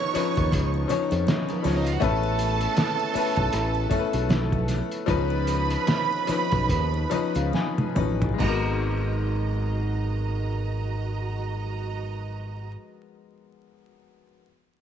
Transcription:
Already playing: french horn section C#3 F3 B3 D#4, grand piano F3 C#4 D#4 B4, string section C#5 C#6
0.00 muted triangle
0.14 grand piano F3 C#4 D#4 B4, muted fingered electric bass stroke, closed hi-hat, triangle
0.36 fingered electric bass D#2, kick, closed hi-hat, muted triangle
0.52 fingered electric bass C#2, kick, closed hi-hat, muted triangle
0.74 muted triangle
0.88 grand piano F3 C#4 D#4 C#5, closed hi-hat, muted conga, low conga, triangle
1.11 fingered electric bass F2, closed hi-hat, muted triangle
1.27 snare, closed hi-hat, high conga, muted triangle
1.39 string section G#3 G#4
1.49 string section A#3 A#4, closed hi-hat, high conga, muted triangle
1.57 string section B3 B4
1.62 fingered electric bass C#2, grand piano F3 C#4 D#4 C#5, string section C#4 C#5, snare, open hi-hat, high conga, triangle
1.76 string section D#4 D#5
1.86 string section F4 F5, closed hi-hat, muted triangle
1.94 string section F#4 F#5
2.00 fingered electric bass A1, grand piano A3 C#4 A4 B4, french horn section A3 E4, string section A4 A5, kick, closed hi-hat, muted conga, muted triangle
2.24 muted triangle
2.39 closed hi-hat, triangle
2.61 closed hi-hat, muted triangle
2.77 snare, closed hi-hat, high conga, muted triangle
3.00 muted triangle
3.13 grand piano A3 C#4 A4 B4, muted fingered electric bass stroke, open hi-hat, triangle
3.36 fingered electric bass B1, kick, closed hi-hat, muted triangle
3.53 fingered electric bass A1, closed hi-hat, muted triangle
3.75 muted triangle
3.89 grand piano A3 C#4 A4, kick, closed hi-hat, muted conga, low conga, triangle
3.99 grand piano B4
4.13 fingered electric bass B1, closed hi-hat, muted triangle
4.29 snare, closed hi-hat, high conga, muted triangle
4.52 kick, high conga, muted triangle
4.68 snare, closed hi-hat, high conga, triangle
4.91 closed hi-hat, muted triangle
5.06 fingered electric bass C#2, french horn section C#3 F3 D#4, grand piano F3 C#4 D#4 B4, string section B4 B5, kick, closed hi-hat, muted conga, muted triangle
5.30 muted triangle
5.47 closed hi-hat, triangle
5.70 closed hi-hat, muted triangle
5.87 snare, closed hi-hat, high conga, muted triangle
6.13 muted triangle
6.27 grand piano F3 C#4 D#4 B4, muted fingered electric bass stroke, snare, closed hi-hat, triangle
6.52 fingered electric bass B1, kick, closed hi-hat, muted triangle
6.69 fingered electric bass D#2, kick, closed hi-hat, muted conga, muted triangle
6.94 muted triangle
7.10 grand piano F3 C#4 D#4 B4 D#5, closed hi-hat, muted conga, low conga, triangle
7.35 fingered electric bass C#2, grand piano F5, closed hi-hat, muted triangle
7.53 grand piano G#5, snare, high conga, muted triangle
7.78 high tom, high conga, muted triangle
7.95 fingered electric bass A1, grand piano F3 C#4 D#4 B4 B5, mid tom, high conga, triangle
8.22 floor tom, muted triangle
8.34 grand piano G#3
8.38 fingered electric bass G#1, french horn section B2 F#3 G#3 D#4 A#4, grand piano B3, string section F#4 D#5 A#5, kick, crash, muted conga, muted triangle
8.43 grand piano F#4
8.48 grand piano A#4

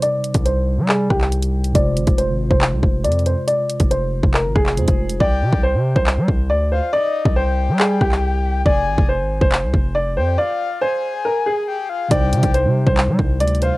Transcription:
Already playing: tine electric piano C3 G3 D#4 C5
0.02 upright piano D5, closed hi-hat
0.24 closed hi-hat
0.34 808-style bass C2, kick, closed hi-hat
0.45 upright piano C5, closed hi-hat
0.78 808-style bass G3
0.89 upright piano G#4, clap
1.10 808-style bass C2, upright piano G4, kick, cross-stick
1.21 clap
1.32 closed hi-hat
1.42 closed hi-hat
1.64 closed hi-hat
1.73 808-style bass F1, tine electric piano C3 G#3 F4, upright piano D5, kick, closed hi-hat
1.77 tine electric piano C5
1.97 808-style bass G#1, closed hi-hat
2.07 808-style bass F1, kick, closed hi-hat
2.18 upright piano C5, closed hi-hat
2.29 808-style bass G#1
2.51 808-style bass F1, upright piano C5, kick
2.61 clap
2.72 808-style bass C2
2.83 808-style bass F1, kick
3.04 808-style bass F2, upright piano D5, closed hi-hat
3.12 closed hi-hat
3.19 closed hi-hat
3.26 upright piano C5, closed hi-hat
3.47 upright piano D5, closed hi-hat
3.69 closed hi-hat
3.80 808-style bass F1, kick, closed hi-hat
3.91 upright piano C5, closed hi-hat
4.23 808-style bass F1, kick
4.34 upright piano A#4, clap
4.45 808-style bass G#1
4.55 808-style bass F1, upright piano G#4, kick, cross-stick
4.66 clap
4.76 808-style bass F2, tine electric piano C3 G#3 F4 C5, closed hi-hat
4.88 808-style bass F1, kick, closed hi-hat
5.10 closed hi-hat
5.20 808-style bass C2, upright piano D5, soft synth lead G5, kick
5.42 808-style bass C3
5.53 808-style bass C2, kick
5.63 upright piano C5
5.74 808-style bass C3
5.96 808-style bass C2, upright piano C5, kick
6.07 clap
6.18 808-style bass G3
6.28 808-style bass C2, kick
6.50 808-style bass D2, upright piano D5
6.71 upright piano C5, soft synth lead F5
6.93 upright piano D5, soft synth lead D#5
7.25 808-style bass C2, kick
7.36 upright piano C5, soft synth lead G5
7.69 808-style bass G3
7.79 upright piano G#4, clap
8.01 808-style bass C2, upright piano G4, kick, cross-stick
8.12 clap
8.66 808-style bass F1, upright piano D5, soft synth lead G#5, kick
8.87 808-style bass G#1
8.98 808-style bass F1, kick
9.09 upright piano C5
9.20 808-style bass G#1
9.41 808-style bass F1, upright piano C5, kick
9.52 clap
9.63 808-style bass C2
9.74 808-style bass F1, kick
9.95 upright piano D5
10.17 808-style bass F2, upright piano C5, soft synth lead G5
10.38 upright piano D5, soft synth lead F5
10.81 upright piano C5, soft synth lead G#5
11.25 upright piano A#4
11.46 upright piano G#4
11.68 soft synth lead G5
11.89 soft synth lead F5
12.08 808-style bass C2, tine electric piano C3 G3 D#4, upright piano D5, soft synth lead G5, kick, closed hi-hat
12.13 tine electric piano C5
12.33 808-style bass C3, closed hi-hat
12.43 808-style bass C2, kick, closed hi-hat
12.54 upright piano C5, closed hi-hat
12.65 808-style bass C3
12.86 808-style bass C2, upright piano C5, kick
12.97 clap
13.08 808-style bass G3
13.19 808-style bass C2, kick
13.40 808-style bass D2, upright piano D5, closed hi-hat
13.48 closed hi-hat
13.55 closed hi-hat
13.62 upright piano C5, soft synth lead F5, closed hi-hat

